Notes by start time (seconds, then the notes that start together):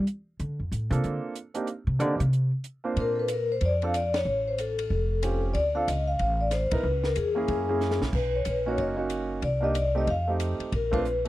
0.07 closed hi-hat
0.40 D3, closed hi-hat
0.60 F2
0.72 A2, closed hi-hat
0.90 C3 A#3 C4 D4 F4 A4, closed hi-hat
1.04 D3, closed hi-hat
1.36 closed hi-hat
1.54 A#3 C4 D4 D#4 G4, closed hi-hat
1.67 closed hi-hat
1.87 C3
1.99 D3 A#3 C4 D4 D#4 G4, closed hi-hat
2.20 C3, closed hi-hat
2.33 closed hi-hat
2.64 closed hi-hat
2.84 A#3 C4 D4 F4 C5
2.96 A#2 A#4, kick, ride
3.15 A4
3.19 B4
3.28 hi-hat pedal, ride
3.33 A#4
3.52 C5
3.61 F2, kick, ride
3.65 D5
3.82 C4 D4 F4 A4 F5, ride
3.94 D5, hi-hat pedal, ride
4.14 C#5, snare, ride
4.25 A1
4.48 C5
4.58 A4, hi-hat pedal, ride
4.79 ride
4.90 F1, kick
5.23 C4 C#4 F4 G4, hi-hat pedal, ride
5.54 D2 D5, kick, ride
5.75 C4 D4 F4 A4 F5
5.88 C#2 D#5, hi-hat pedal, ride
6.08 F5
6.19 A1, kick, ride
6.41 D5
6.51 C5, snare, hi-hat pedal, ride
6.71 A#1 B3 D#4 E4 A#4 B4, kick, ride
6.83 C#2
7.04 A#4, snare
7.16 E2 G#4, hi-hat pedal, ride
7.35 A#3 C#4 E4 G#4
7.48 F#2, kick, ride
7.68 A#3 C#4 E4 G#4
7.81 snare, hi-hat pedal
7.91 snare
8.01 A#1, snare
8.13 B1 B4, kick, crash
8.35 C#5
8.45 A#1, hi-hat pedal, ride
8.49 B4
8.66 A#3 C#4 D#4 F#4 C#5
8.78 F#1 D#5, kick, ride
8.97 A#3 C#4 D#4 F#4
9.10 hi-hat pedal, ride
9.42 C2 D5, kick, ride
9.60 A#3 D4 D#4 G4 D#5
9.74 D5, hi-hat pedal, ride
9.95 A3 C4 D#4 G4 D#5
10.07 F2 F5, kick, ride
10.28 A3 C4 D#4 G4
10.40 hi-hat pedal, ride
10.60 muted upright bass stroke, ride
10.72 A#1 A#4, kick, ride
10.91 A3 C4 D4 F4 B4, kick, ride
11.05 hi-hat pedal
11.25 A3